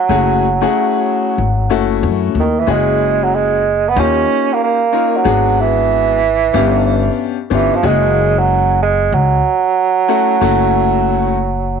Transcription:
Already playing: F#3
0.09 F#1 A3 C#4 E4 F#4 G#4
0.61 A3 C#4 E4 F#4 G#4
1.38 G#1
1.70 F#1 A3 C#4 E4 F#4 A4
2.03 F#2
2.35 D#2
2.40 D#3
2.60 E3
2.66 F#1 G#3 C#4 E4 F#4 G#4
2.71 G#3
3.24 F#3
3.35 G#3
3.89 B3
3.96 D#2 A#3 C#4 D#4 F4 G4
4.53 A#3
4.64 A#3
4.92 A#3 C#4 D#4 F4 A#4
5.17 F#3
5.24 G#1 G#3 B3 D4 F#4 G#4
5.60 E3
6.53 G1 B3 C#4 D4 G4 F5
7.50 G1 E3 B3 C#4 D4 F4 G4
7.74 F3
7.83 F#1 G#3 C#4 E4 F#4 G#4
7.89 G#3
8.39 F#3
8.83 G#3
9.12 C#2 F#3
10.08 A3 C#4 E4 F#4 A4
10.41 F#1 A3 C#4 E4 F#4 A4

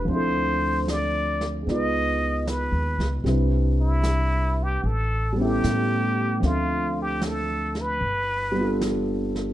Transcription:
Already playing: E4 A4
0.05 D2 F3 C4, brush sweep
0.09 D4 E4 C5
0.16 A4
0.88 D5, snare, hi-hat pedal
1.41 snare
1.63 G#3 B3
1.67 C#2 D#4 D#5, brush sweep, snare
1.71 F4 B4
2.47 B4, snare, hi-hat pedal
2.72 D#2
2.98 C#2, snare
3.24 C2 G3 C4 D4, brush sweep, snare
3.28 E4 B4
3.82 E4
4.03 snare, hi-hat pedal
4.63 G4
4.83 A1 A4, brush sweep
5.33 G3 B3
5.39 C#4 E4 G4
5.44 A4
5.64 A2, snare, hi-hat pedal
6.40 D2 F3 C4 D4, brush sweep, snare
6.44 F4 A4 E5
7.02 G4
7.22 snare, hi-hat pedal
7.26 A4
7.75 snare
7.81 B4
8.01 G1, brush sweep
8.52 G3 B3
8.58 D4 F4
8.63 A4
8.81 snare, hi-hat pedal
9.36 snare

